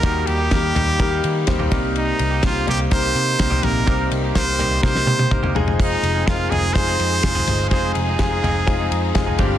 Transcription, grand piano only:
<<
  \new Staff \with { instrumentName = "Grand piano" } { \time 4/4 \key f \dorian \tempo 4 = 125 <g bes ees' ges' g' bes'>4 <g bes ees' g' bes'>4 <g bes ees' g' bes'>4 <g bes ees' g' c''>8 <bes c' ees' g' bes'>8~ | <bes c' ees' g' bes'>8 r8 <bes c' ees' g' c''>4 <bes c' ees' g' bes'>4 <bes c' ees' g' bes'>4 | <bes c' ees' g' bes'>4 <bes c' ees' g' bes'>4 <bes c' ees' g' bes'>4 <bes c' ees' g' bes'>8 <aes c' ees' f' aes'>8~ | <aes c' ees' f' aes'>8 r8 <aes c' ees' f' bes'>4 <aes c' ees' f' aes'>4 <aes c' ees' f' aes'>4 |
<aes c' ees' f' aes'>4 <aes c' ees' f' aes'>4 <aes c' ees' f' aes'>4 <aes c' ees' f' aes'>8 <g c' d' f' g'>8 | }
  \new Staff \with { instrumentName = "Grand piano" } { \clef bass \time 4/4 \key f \dorian ees4. r2 c8~ | c4 r2 r8 c8~ | c4 r2. | r1 |
r2. r8 g,8 | }
>>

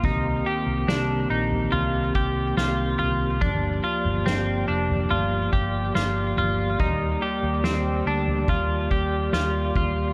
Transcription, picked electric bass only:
\new Staff \with { instrumentName = "Picked electric bass" } { \clef bass \time 4/4 \key g \minor \tempo 4 = 71 c,8 r16 c,16 c,8 bes,,8 c,8 c,8 c,8 c,8 | g,,8 r16 g,,16 g,,8 f,,8 g,,8 g,,8 g,,8 g,,8 | ees,8 r16 ees,16 ees,8 d,8 ees,8 ees,8 ees,8 ees,8 | }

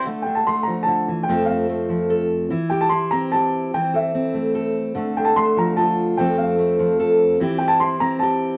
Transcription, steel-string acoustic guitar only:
\new Staff \with { instrumentName = "Steel-string acoustic guitar" } { \time 3/4 \key f \major \tempo 4 = 147 << { a8 d'8 a2 | <f a c' a'>8 c'8 a4 a'4 | e'8 g'8 e'4 g'4 | c'8 a'8 c'4 a'4 |
a8 d'8 a4 f'4 | <f a c' a'>8 c'8 a4 a'4 | <c' e' g'>8 g'8 e'4 g'4 | } \\ { d4. f8 d8 e8 | f,4. f4. | e4. c'4. | e4. a4. |
d4. f4. | f,4. f4. | e4. c'4. | } >> }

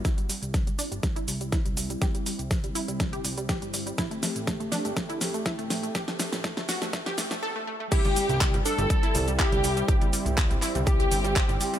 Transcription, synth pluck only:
\new Staff \with { instrumentName = "Synth pluck" } { \time 4/4 \key c \lydian \tempo 4 = 122 e'16 g16 g16 r16 g16 g16 d'16 g16 g16 e'16 g16 g16 e'16 g16 g16 g16 | g'16 g16 g16 r16 g16 g16 e'16 g16 g16 g'16 g16 g16 g'16 g16 g16 g16 | e'16 a16 a16 r16 a16 a16 d'16 a16 a16 e'16 a16 a16 e'16 a16 a16 a16 | g'16 a16 a16 r16 a16 a16 fis'16 a16 a16 g'16 a16 a16 a'16 a16 a16 a16 |
e'16 g16 g16 r16 g16 g16 d'16 g16 g16 e'16 g16 g16 e'16 g16 g16 g16 | g'16 g16 g16 r16 g16 g16 e'16 g16 g16 g'16 g16 g16 g'16 g16 g16 g16 | }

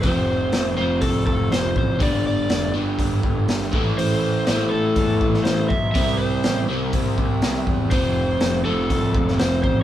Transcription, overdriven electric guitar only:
\new Staff \with { instrumentName = "Overdriven electric guitar" } { \clef bass \time 4/4 \key f \lydian \tempo 4 = 122 <f, c f>4. <f, c f>2~ <f, c f>8 | <g, d g>4. <g, d g>2 <a, e a>8~ | <a, e a>4 <a, e a>2~ <a, e a>8 r8 | <c g c'>4. <c g c'>2~ <c g c'>8 |
<f, c f>4. <f, c f>2~ <f, c f>8 | }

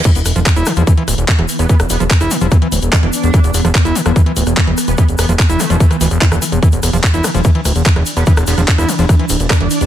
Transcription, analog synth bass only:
\new Staff \with { instrumentName = "Analog synth bass" } { \clef bass \time 4/4 \key c \major \tempo 4 = 146 r16 e,,16 e,,16 e,,16 r16 e,,16 r16 e,,16 r8 d,,16 e,,16 r16 e,,16 r16 e,,16 | r16 e,,16 e,,16 e,,16 r16 e,,16 r16 e,,16 r8 d,,16 e,,16 r16 e,,16 r16 e,,16 | r16 e,,16 e,,16 e,,16 r16 e,,16 r16 e,,16 r8 d,,16 e,,16 r16 e,,16 r16 e,,16 | r16 e,,16 e,,16 e,,16 r16 e,,16 r16 e,,16 r8 d,,16 e,,16 r16 e,,16 r16 e,,16 |
r16 e,,16 e,,16 e,,16 r16 e,,16 r16 e,,16 r8 d,,16 e,,16 r16 e,,16 r16 e,,16 | r16 e,,16 e,,16 e,,16 r16 e,,16 r16 e,,16 r8 d,,16 e,,16 r16 e,,16 r16 e,,16 | }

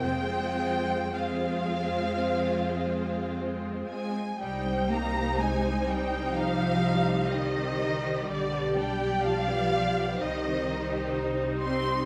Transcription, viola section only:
\new Staff \with { instrumentName = "Viola section" } { \time 4/4 \key f \minor \tempo 4 = 62 << { c'4 c'2. | \key c \minor ees'1 | g'2 ees'2 | } \\ { aes4 aes2. | g1~ | g2 g2 | } >> }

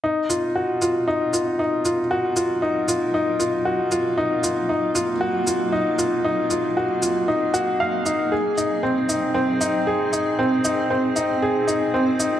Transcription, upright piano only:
\new Staff \with { instrumentName = "Upright piano" } { \time 4/4 \key ees \dorian \tempo 4 = 116 ees'8 f'8 ges'8 f'8 ees'8 f'8 ees'8 f'8 | ges'8 f'8 ees'8 f'8 ees'8 f'8 ges'8 f'8 | ees'8 f'8 ees'8 f'8 ges'8 f'8 ees'8 f'8 | ees'8 f'8 ges'8 f'8 ees'8 ges'8 f''8 ees'8 |
aes'8 ees'8 c'8 ees'8 c'8 ees'8 aes'8 ees'8 | c'8 ees'8 c'8 ees'8 aes'8 ees'8 c'8 ees'8 | }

